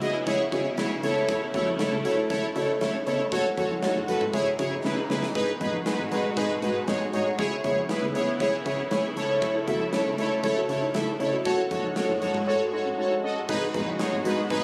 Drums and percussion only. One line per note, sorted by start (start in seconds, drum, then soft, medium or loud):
0.02 closed hi-hat medium
0.27 kick medium
0.27 closed hi-hat medium
0.52 kick medium
0.52 closed hi-hat medium
0.52 cowbell medium
0.78 snare loud
0.78 closed hi-hat medium
1.03 closed hi-hat medium
1.29 kick loud
1.29 closed hi-hat medium
1.54 closed hi-hat medium
1.54 mid tom medium
1.79 snare loud
1.79 closed hi-hat medium
2.05 closed hi-hat medium
2.30 kick loud
2.30 closed hi-hat medium
2.56 closed hi-hat medium
2.56 cowbell medium
2.81 snare loud
2.81 closed hi-hat medium
3.06 closed hi-hat medium
3.06 cowbell medium
3.32 kick loud
3.32 closed hi-hat medium
3.57 closed hi-hat medium
3.57 mid tom medium
3.83 snare loud
3.83 closed hi-hat medium
4.08 closed hi-hat medium
4.21 mid tom loud
4.33 kick medium
4.33 closed hi-hat medium
4.59 kick medium
4.59 closed hi-hat medium
4.85 snare medium
5.10 snare loud
5.23 snare medium
5.35 kick loud
5.35 closed hi-hat medium
5.61 closed hi-hat medium
5.61 mid tom medium
5.86 snare loud
5.86 closed hi-hat medium
6.11 closed hi-hat medium
6.11 cowbell medium
6.37 kick medium
6.37 closed hi-hat medium
6.50 mid tom medium
6.62 closed hi-hat medium
6.88 snare loud
6.88 closed hi-hat medium
7.13 closed hi-hat medium
7.39 kick loud
7.39 closed hi-hat medium
7.64 closed hi-hat medium
7.64 mid tom medium
7.89 snare loud
7.89 closed hi-hat medium
8.15 closed hi-hat medium
8.40 kick medium
8.40 closed hi-hat medium
8.66 kick medium
8.66 closed hi-hat medium
8.91 snare loud
8.91 closed hi-hat medium
9.17 closed hi-hat medium
9.42 kick loud
9.42 closed hi-hat medium
9.68 closed hi-hat medium
9.68 mid tom medium
9.93 snare loud
9.93 closed hi-hat medium
10.18 closed hi-hat medium
10.43 kick medium
10.43 closed hi-hat medium
10.69 closed hi-hat medium
10.94 snare loud
10.94 closed hi-hat medium
11.20 closed hi-hat medium
11.20 cowbell medium
11.45 kick loud
11.45 closed hi-hat medium
11.71 closed hi-hat medium
11.71 mid tom medium
11.96 snare loud
11.96 closed hi-hat medium
12.22 closed hi-hat medium
12.34 mid tom loud
13.49 kick loud
13.49 crash loud
13.74 closed hi-hat medium
13.74 mid tom medium
13.99 snare loud
13.99 closed hi-hat medium
14.25 closed hi-hat medium
14.50 kick loud
14.50 closed hi-hat medium